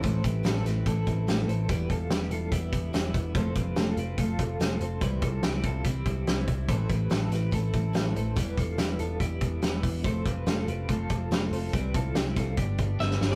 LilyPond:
<<
  \new Staff \with { instrumentName = "Clean electric guitar" } { \time 4/4 \key a \minor \tempo 4 = 143 r1 | r1 | r1 | r1 |
r1 | r1 | r1 | r2. e''8. d''16 | }
  \new Staff \with { instrumentName = "Clean electric guitar" } { \time 4/4 \key a \minor <a' c''>8 <g' b'>8 <e' a'>8 <g' b'>8 <e' a'>4. <a' c''>8 | <g' b'>8 <f' a'>8 <e' g'>8 <f' a'>8 <e' g'>4 <b e'>4 | <a' c''>8 <g' b'>8 <f' a'>8 <g' b'>8 <f' a'>4. <a' c''>8 | <g' b'>8 <f' a'>8 <e' g'>8 <f' a'>8 <e' g'>4 <c' e'>4 |
<a' c''>8 <g' b'>8 <e' a'>8 <g' b'>8 <e' a'>4. <a' c''>8 | <g' b'>8 <f' a'>8 <e' g'>8 <f' a'>8 <e' g'>4 <b e'>4 | <a' c''>8 <g' b'>8 <f' a'>8 <g' b'>8 <f' a'>4. <a' c''>8 | <g' b'>8 <f' a'>8 <e' g'>8 <f' a'>8 <d' g'>4 <b e'>4 | }
  \new Staff \with { instrumentName = "Steel-string acoustic guitar" } { \time 4/4 \key a \minor <a, e a c' e' b'>8 <a c' e' b'>8 <a, e a c' e' b'>8 <a c' e' b'>8 <a c' e' b'>8 <a c' e' b'>8 <a, e a c' e' b'>8 <a c' e' b'>8 | <e g b e'>8 <g b e'>8 <e g b e'>8 <g b e'>8 <e g b e'>8 <g b e'>8 <e g b e'>8 <g b e'>8 | <f a c' f'>8 <a c' f'>8 <f a c' f'>8 <a c' f'>8 <f a c' f'>8 <a c' f'>8 <f a c' f'>8 <a c' f'>8 | <c e g c' e'>8 <g c' e'>8 <c e g c' e'>8 <g c' e'>8 <e g c' e'>8 <g c' e'>8 <c e g c' e'>8 <g c' e'>8 |
<a, e a c' e' b'>8 <a c' e' b'>8 <a, e a c' e' b'>8 <a c' e' b'>8 <a c' e' b'>8 <a c' e' b'>8 <a, e a c' e' b'>8 <a c' e' b'>8 | <e g b e'>8 <g b e'>8 <e g b e'>8 <g b e'>8 <e g b e'>8 <g b e'>8 <e g b e'>8 <g b e'>8 | <f a c' f'>8 <a c' f'>8 <f a c' f'>8 <a c' f'>8 <f a c' f'>8 <a c' f'>8 <f a c' f'>8 <a c' f'>8 | <c g c' e'>8 <g c' e'>8 <c g c' e'>8 <g c' e'>8 <d g b d'>8 <g b d'>8 <g, d g b d'>8 <b d'>8 | }
  \new Staff \with { instrumentName = "Picked electric bass" } { \clef bass \time 4/4 \key a \minor a,,8 a,,8 a,,8 a,,8 a,,8 a,,8 a,,8 a,,8 | e,,8 e,,8 e,,8 e,,8 e,,8 e,,8 e,,8 e,,8 | f,,8 f,,8 f,,8 f,,8 f,,8 f,,8 f,,8 f,,8 | c,8 c,8 c,8 c,8 c,8 c,8 c,8 c,8 |
a,,8 a,,8 a,,8 a,,8 a,,8 a,,8 a,,8 a,,8 | e,,8 e,,8 e,,8 e,,8 e,,8 e,,8 e,,8 e,,8 | f,,8 f,,8 f,,8 f,,8 f,,8 f,,8 f,,8 f,,8 | c,8 c,8 c,8 c,8 g,,8 g,,8 g,,8 g,,8 | }
  \new DrumStaff \with { instrumentName = "Drums" } \drummode { \time 4/4 <hh bd>8 <hh bd>8 <hh sn>8 <hh sn>8 <hh bd>8 <hh bd>8 <hh sn>8 hh8 | <hh bd>8 <hh bd>8 <hh sn>8 hh8 <hh bd>8 <hh bd>8 <hh sn>8 <hh bd>8 | <hh bd>8 <hh bd>8 <hh sn>8 hh8 <hh bd>8 <hh bd>8 <hh sn>8 hh8 | <hh bd>8 <hh bd>8 <hh sn>8 <hh bd>8 <hh bd>8 <hh bd>8 <hh sn>8 <hh bd>8 |
<hh bd>8 <hh bd>8 <hh sn>8 <hh sn>8 <hh bd>8 <hh bd>8 <hh sn>8 hh8 | <hh bd>8 <hh bd>8 <hh sn>8 hh8 <hh bd>8 <hh bd>8 <hh sn>8 <hho bd>8 | <hh bd>8 <hh bd>8 <hh sn>8 hh8 <hh bd>8 <hh bd>8 <hh sn>8 hho8 | <hh bd>8 <hh bd>8 <hh sn>8 <hh bd sn>8 <hh bd>8 <hh bd>8 sn16 sn16 sn16 sn16 | }
>>